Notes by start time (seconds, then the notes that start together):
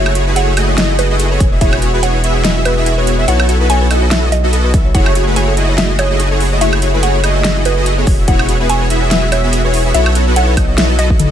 Already playing: F#1 A3 E4 F#4 G#4 C#5 E5
0.06 high woodblock
0.15 A3 E4 F#4 G#4 C#5, closed hi-hat
0.27 A3 E4 F#4 G#4 B4
0.36 A3 E4 F#4 G#4 C#5 F#5, closed hi-hat
0.48 A4
0.57 A3 E4 F#4 G#4 D#5, closed hi-hat, high woodblock
0.69 C#5
0.78 A3 E4 F#4 G#4 D#5, snare, closed hi-hat
0.99 A3 E4 F#4 G#4 B4 D#5, closed hi-hat
1.10 A3 E4 F#4 G#4 D#5
1.20 G#4, closed hi-hat
1.31 B3 E4 F#4 G#4 A4 C#5
1.40 E1, kick, closed hi-hat
1.52 B3 E4 F#4 G#4 C#5 E5
1.61 B3 E4 F#4 G#4 C#5 E5, kick, closed hi-hat
1.73 high woodblock
1.82 B3 E4 F#4 G#4 C#5, closed hi-hat
1.94 B3 E4 F#4 G#4 B4
2.03 B3 E4 F#4 G#4 C#5 F#5, closed hi-hat
2.15 B4
2.24 B3 E4 F#4 G#4 E5, closed hi-hat
2.35 C#5
2.44 B3 E4 F#4 G#4 D#5 E5, snare, closed hi-hat
2.65 B3 E4 F#4 G#4 B4 E5, closed hi-hat, high woodblock
2.77 B3 E4 F#4 G#4 E5
2.86 G#4, closed hi-hat
2.98 B3 E4 F#4 G#4 B4 C#5
3.07 closed hi-hat
3.19 B3 E4 F#4 G#4 C#5 E5
3.28 B1 B3 E4 F#4 A4 C#5 F#5, closed hi-hat
3.40 high woodblock
3.49 B3 E4 F#4 A4 C#5, closed hi-hat
3.60 B3 E4 F#4 A4 B4
3.69 B3 E4 F#4 A4 C#5 G#5, closed hi-hat
3.81 B4
3.90 B3 E4 F#4 A4 D#5, closed hi-hat, high woodblock
4.02 C#5
4.11 B3 E4 F#4 A4 D#5 E5, snare, closed hi-hat
4.32 F#4 D#5, closed hi-hat
4.44 B3 E4 F#4 A4 D#5
4.53 B3 E4 F#4 A4 D#5, closed hi-hat
4.65 B4
4.74 B3 E4 F#4 A4 E5, kick, closed hi-hat
4.85 C#5
4.94 F#1 A3 E4 F#4 G#4 C#5 F#5, kick, closed hi-hat
5.06 high woodblock
5.15 A3 E4 F#4 G#4 C#5, closed hi-hat
5.27 A3 E4 F#4 G#4 B4
5.36 A3 E4 F#4 G#4 C#5 G#5, closed hi-hat
5.48 A4
5.57 A3 E4 F#4 G#4 D#5, closed hi-hat
5.69 C#5
5.78 A3 E4 F#4 G#4 D#5 E5, snare, closed hi-hat
5.99 A3 E4 F#4 G#4 C#5 D#5, closed hi-hat, high woodblock
6.10 A3 E4 F#4 G#4 D#5
6.20 G#4, closed hi-hat
6.31 A3 E4 F#4 G#4 A4 C#5
6.40 open hi-hat
6.52 A3 E4 F#4 G#4 C#5 D#5
6.61 A3 E4 F#4 G#4 C#5 E5, closed hi-hat
6.73 high woodblock
6.82 A3 E4 F#4 G#4 C#5, closed hi-hat
6.94 A3 E4 F#4 G#4 B4
7.03 A3 E4 F#4 G#4 C#5 F#5, closed hi-hat
7.15 A4
7.24 A3 E4 F#4 G#4 D#5, closed hi-hat, high woodblock
7.35 C#5
7.45 A3 E4 F#4 G#4 D#5, snare, closed hi-hat
7.65 A3 E4 F#4 G#4 B4 D#5, closed hi-hat
7.77 A3 E4 F#4 G#4 D#5
7.86 G#4, closed hi-hat
7.98 B3 E4 F#4 G#4 A4 C#5
8.07 E1, kick, open hi-hat
8.19 B3 E4 F#4 G#4 C#5 E5
8.28 B3 E4 F#4 G#4 C#5 F#5, kick, closed hi-hat
8.39 high woodblock
8.49 B3 E4 F#4 G#4 C#5, closed hi-hat
8.60 B3 E4 F#4 G#4 B4
8.69 B3 E4 F#4 G#4 C#5 G#5, closed hi-hat
8.81 B4
8.90 B3 E4 F#4 G#4 E5, closed hi-hat
9.02 C#5
9.11 B3 E4 F#4 G#4 E5, snare, closed hi-hat
9.32 B3 E4 F#4 G#4 C#5 E5, closed hi-hat, high woodblock
9.44 B3 E4 F#4 G#4 E5
9.53 G#4, closed hi-hat
9.64 B3 E4 F#4 G#4 B4 C#5
9.74 open hi-hat
9.85 B3 E4 F#4 G#4 C#5 E5
9.94 B1 B3 E4 F#4 A4 C#5 E5, closed hi-hat
10.06 high woodblock
10.15 B3 E4 F#4 A4 C#5, closed hi-hat
10.27 B3 E4 F#4 A4 B4
10.36 B3 E4 F#4 A4 C#5 F#5, closed hi-hat
10.48 B4
10.57 B3 E4 F#4 A4 D#5, kick, closed hi-hat, high woodblock
10.69 C#5
10.78 B3 E4 F#4 A4 D#5 E5, snare, closed hi-hat
10.99 B3 E4 F#4 A4 D#5, closed hi-hat
11.10 B3 F#4 D#5, kick
11.20 A4, closed hi-hat, high tom